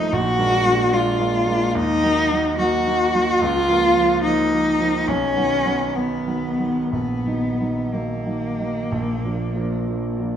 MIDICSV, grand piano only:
0, 0, Header, 1, 2, 480
1, 0, Start_track
1, 0, Key_signature, -6, "minor"
1, 0, Tempo, 821918
1, 73, Time_signature, 4, 2, 24, 8
1, 1993, Tempo, 834492
1, 2953, Tempo, 878477
1, 3433, Tempo, 985222
1, 4873, Tempo, 953895
1, 5603, End_track
2, 0, Start_track
2, 0, Title_t, "Grand piano"
2, 0, Program_c, 0, 0
2, 0, Control_c, 0, 64, 127
2, 0, Note_on_c, 0, 36, 80
2, 0, Note_on_c, 0, 53, 54
2, 0, Note_on_c, 0, 57, 53
2, 0, Note_on_c, 0, 63, 57
2, 59, Note_off_c, 0, 53, 0
2, 60, Note_off_c, 0, 57, 0
2, 61, Note_off_c, 0, 63, 0
2, 74, Note_on_c, 0, 34, 71
2, 84, Control_c, 0, 64, 0
2, 89, Note_off_c, 0, 36, 0
2, 182, Control_c, 0, 64, 127
2, 226, Note_on_c, 0, 56, 55
2, 227, Note_off_c, 0, 34, 0
2, 230, Note_on_c, 0, 58, 59
2, 232, Note_on_c, 0, 62, 60
2, 368, Note_off_c, 0, 56, 0
2, 371, Note_off_c, 0, 58, 0
2, 372, Note_off_c, 0, 62, 0
2, 382, Note_on_c, 0, 56, 56
2, 384, Note_on_c, 0, 58, 50
2, 385, Note_on_c, 0, 62, 64
2, 524, Note_off_c, 0, 56, 0
2, 526, Note_off_c, 0, 58, 0
2, 526, Note_off_c, 0, 62, 0
2, 535, Note_on_c, 0, 56, 56
2, 538, Note_on_c, 0, 58, 53
2, 540, Note_on_c, 0, 62, 62
2, 681, Note_off_c, 0, 56, 0
2, 682, Note_off_c, 0, 58, 0
2, 683, Note_off_c, 0, 62, 0
2, 692, Note_on_c, 0, 56, 54
2, 696, Note_on_c, 0, 58, 52
2, 698, Note_on_c, 0, 62, 61
2, 840, Note_off_c, 0, 56, 0
2, 842, Note_off_c, 0, 58, 0
2, 843, Note_off_c, 0, 62, 0
2, 858, Note_on_c, 0, 56, 58
2, 860, Note_on_c, 0, 58, 59
2, 861, Note_on_c, 0, 62, 60
2, 1005, Note_off_c, 0, 56, 0
2, 1006, Note_off_c, 0, 58, 0
2, 1007, Note_off_c, 0, 62, 0
2, 1021, Note_on_c, 0, 39, 77
2, 1034, Control_c, 0, 64, 0
2, 1124, Control_c, 0, 64, 127
2, 1181, Note_off_c, 0, 39, 0
2, 1186, Note_on_c, 0, 54, 55
2, 1188, Note_on_c, 0, 58, 59
2, 1189, Note_on_c, 0, 63, 61
2, 1335, Note_off_c, 0, 54, 0
2, 1336, Note_off_c, 0, 58, 0
2, 1337, Note_off_c, 0, 63, 0
2, 1350, Note_on_c, 0, 54, 58
2, 1353, Note_on_c, 0, 58, 52
2, 1355, Note_on_c, 0, 63, 59
2, 1498, Note_off_c, 0, 54, 0
2, 1500, Note_off_c, 0, 58, 0
2, 1501, Note_off_c, 0, 63, 0
2, 1510, Note_on_c, 0, 54, 61
2, 1511, Note_on_c, 0, 58, 56
2, 1514, Note_on_c, 0, 63, 62
2, 1657, Note_off_c, 0, 54, 0
2, 1658, Note_off_c, 0, 58, 0
2, 1659, Note_off_c, 0, 63, 0
2, 1675, Note_on_c, 0, 54, 55
2, 1676, Note_on_c, 0, 58, 52
2, 1677, Note_on_c, 0, 63, 62
2, 1817, Note_off_c, 0, 54, 0
2, 1818, Note_off_c, 0, 58, 0
2, 1819, Note_off_c, 0, 63, 0
2, 1833, Note_on_c, 0, 54, 53
2, 1834, Note_on_c, 0, 58, 50
2, 1837, Note_on_c, 0, 63, 63
2, 1976, Note_off_c, 0, 54, 0
2, 1976, Note_off_c, 0, 58, 0
2, 1978, Note_off_c, 0, 63, 0
2, 1995, Note_on_c, 0, 37, 74
2, 2003, Control_c, 0, 64, 0
2, 2104, Control_c, 0, 64, 127
2, 2148, Note_off_c, 0, 37, 0
2, 2153, Note_on_c, 0, 53, 51
2, 2156, Note_on_c, 0, 58, 60
2, 2297, Note_off_c, 0, 53, 0
2, 2299, Note_off_c, 0, 58, 0
2, 2313, Note_on_c, 0, 53, 51
2, 2317, Note_on_c, 0, 58, 56
2, 2458, Note_off_c, 0, 53, 0
2, 2460, Note_off_c, 0, 58, 0
2, 2473, Note_on_c, 0, 53, 52
2, 2478, Note_on_c, 0, 58, 58
2, 2618, Note_off_c, 0, 53, 0
2, 2620, Note_off_c, 0, 58, 0
2, 2635, Note_on_c, 0, 53, 53
2, 2638, Note_on_c, 0, 58, 52
2, 2777, Note_off_c, 0, 53, 0
2, 2779, Note_off_c, 0, 58, 0
2, 2792, Note_on_c, 0, 53, 52
2, 2794, Note_on_c, 0, 58, 51
2, 2936, Note_off_c, 0, 53, 0
2, 2937, Note_off_c, 0, 58, 0
2, 2950, Note_on_c, 0, 35, 70
2, 2960, Control_c, 0, 64, 0
2, 3053, Control_c, 0, 64, 127
2, 3101, Note_off_c, 0, 35, 0
2, 3106, Note_on_c, 0, 51, 47
2, 3109, Note_on_c, 0, 54, 46
2, 3109, Note_on_c, 0, 59, 50
2, 3250, Note_off_c, 0, 51, 0
2, 3251, Note_off_c, 0, 54, 0
2, 3251, Note_off_c, 0, 59, 0
2, 3262, Note_on_c, 0, 51, 43
2, 3264, Note_on_c, 0, 54, 47
2, 3266, Note_on_c, 0, 59, 56
2, 3413, Note_off_c, 0, 51, 0
2, 3414, Note_off_c, 0, 54, 0
2, 3415, Note_off_c, 0, 59, 0
2, 3427, Note_on_c, 0, 51, 43
2, 3430, Note_on_c, 0, 54, 42
2, 3431, Note_on_c, 0, 59, 49
2, 3568, Note_off_c, 0, 51, 0
2, 3569, Note_off_c, 0, 54, 0
2, 3569, Note_off_c, 0, 59, 0
2, 3581, Note_on_c, 0, 51, 44
2, 3585, Note_on_c, 0, 54, 49
2, 3586, Note_on_c, 0, 59, 47
2, 3725, Note_off_c, 0, 51, 0
2, 3727, Note_off_c, 0, 54, 0
2, 3728, Note_off_c, 0, 59, 0
2, 3737, Note_on_c, 0, 51, 44
2, 3739, Note_on_c, 0, 54, 45
2, 3740, Note_on_c, 0, 59, 45
2, 3887, Note_off_c, 0, 51, 0
2, 3888, Note_off_c, 0, 54, 0
2, 3888, Note_off_c, 0, 59, 0
2, 3903, Note_on_c, 0, 34, 57
2, 3915, Control_c, 0, 64, 0
2, 4024, Control_c, 0, 64, 127
2, 4064, Note_off_c, 0, 34, 0
2, 4070, Note_on_c, 0, 51, 41
2, 4070, Note_on_c, 0, 54, 43
2, 4073, Note_on_c, 0, 63, 46
2, 4216, Note_off_c, 0, 51, 0
2, 4216, Note_off_c, 0, 54, 0
2, 4218, Note_off_c, 0, 63, 0
2, 4230, Note_on_c, 0, 51, 39
2, 4233, Note_on_c, 0, 54, 40
2, 4236, Note_on_c, 0, 63, 40
2, 4375, Note_off_c, 0, 51, 0
2, 4376, Note_off_c, 0, 54, 0
2, 4378, Note_off_c, 0, 63, 0
2, 4391, Note_on_c, 0, 51, 42
2, 4393, Note_on_c, 0, 54, 43
2, 4395, Note_on_c, 0, 63, 44
2, 4535, Note_off_c, 0, 51, 0
2, 4536, Note_off_c, 0, 54, 0
2, 4537, Note_off_c, 0, 63, 0
2, 4553, Note_on_c, 0, 51, 39
2, 4554, Note_on_c, 0, 54, 42
2, 4556, Note_on_c, 0, 63, 41
2, 4697, Note_off_c, 0, 51, 0
2, 4698, Note_off_c, 0, 54, 0
2, 4699, Note_off_c, 0, 63, 0
2, 4712, Note_on_c, 0, 51, 44
2, 4716, Note_on_c, 0, 54, 40
2, 4717, Note_on_c, 0, 63, 51
2, 4856, Note_off_c, 0, 51, 0
2, 4858, Note_off_c, 0, 54, 0
2, 4859, Note_off_c, 0, 63, 0
2, 4874, Note_on_c, 0, 34, 64
2, 4882, Control_c, 0, 64, 0
2, 4982, Control_c, 0, 64, 127
2, 5031, Note_off_c, 0, 34, 0
2, 5041, Note_on_c, 0, 53, 42
2, 5042, Note_on_c, 0, 58, 37
2, 5044, Note_on_c, 0, 62, 42
2, 5183, Note_off_c, 0, 53, 0
2, 5183, Note_off_c, 0, 58, 0
2, 5184, Note_off_c, 0, 62, 0
2, 5200, Note_on_c, 0, 53, 42
2, 5200, Note_on_c, 0, 58, 38
2, 5202, Note_on_c, 0, 62, 46
2, 5340, Note_off_c, 0, 53, 0
2, 5340, Note_off_c, 0, 58, 0
2, 5342, Note_off_c, 0, 62, 0
2, 5356, Note_on_c, 0, 53, 38
2, 5359, Note_on_c, 0, 58, 37
2, 5362, Note_on_c, 0, 62, 44
2, 5498, Note_off_c, 0, 53, 0
2, 5500, Note_off_c, 0, 58, 0
2, 5501, Note_off_c, 0, 62, 0
2, 5514, Note_on_c, 0, 53, 41
2, 5518, Note_on_c, 0, 58, 37
2, 5518, Note_on_c, 0, 62, 49
2, 5603, Note_off_c, 0, 53, 0
2, 5603, Note_off_c, 0, 58, 0
2, 5603, Note_off_c, 0, 62, 0
2, 5603, End_track
0, 0, End_of_file